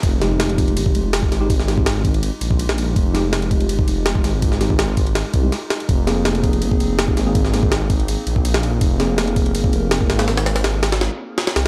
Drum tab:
RD |x-x-xxxxx-x-x-x-|x-x-x-xxx-x-x-x-|x-x-xxxxx-x-x-x-|x-x-x-xxx-x-x-xx|
SD |--o-o-------o-o-|-oo-o--------o--|--o-o-------o-o-|-oo-o---o---o-o-|
BD |o-----o--o---o--|o--o--o----o----|o-----o--o---o--|o--o--o---o-----|

RD |x-x-xxxxx-x-x-x-|x-x-x-xxx-x-x-x-|x-x-xxxxx-x-x-xx|xxxxx-xxx---xxx-|
SD |--o-o-------o-o-|-oo-o--------o--|--o-o-------o-oo|ooooo-ooo---ooo-|
BD |o-----o--o---o--|o--o--o----o----|o-----o--o---o--|----------------|